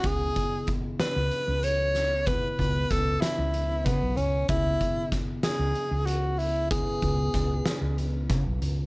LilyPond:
<<
  \new Staff \with { instrumentName = "Tenor saxophone" } { \time 7/8 \key e \major \tempo 4 = 95 gis'4 r8 b'4 cis''4 | b'4 a'8 e'4 b8 cis'8 | e'4 r8 gis'4 fis'8 e'8 | gis'2~ gis'8 r4 | }
  \new Staff \with { instrumentName = "Tine electric piano" } { \time 7/8 \key e \major <cis b e' gis'>2.~ <cis b e' gis'>8 | <cis b e' b'>2.~ <cis b e' b'>8 | <cis b e' gis'>2.~ <cis b e' gis'>8 | <cis b e' b'>2.~ <cis b e' b'>8 | }
  \new Staff \with { instrumentName = "Fretless electric bass" } { \clef bass \time 7/8 \key e \major cis,8 r4 r16 cis,16 r16 cis,4~ cis,16~ | cis,8 cis,8 cis,8 r16 cis,8. cis16 b,,16 cis,8 | cis,8 r4 r16 cis,16 r16 cis,4~ cis,16~ | cis,8 cis,8 cis,8 r16 cis,8. cis16 b,,16 cis,8 | }
  \new DrumStaff \with { instrumentName = "Drums" } \drummode { \time 7/8 <hh bd>8 <hh bd>8 <hh bd>8 <hh sn>8 hh8 hh8 <hh sn>8 | <hh bd>8 <hh bd>8 <hh bd sn>8 <hh sn>8 hh8 <hh bd>8 hh8 | <hh bd>8 <hh bd>8 <hh bd sn>8 <hh sn>8 hh8 hh8 hh8 | <hh bd>8 <hh bd>8 <hh bd sn>8 <hh sn>8 hh8 <hh bd sn>8 hh8 | }
>>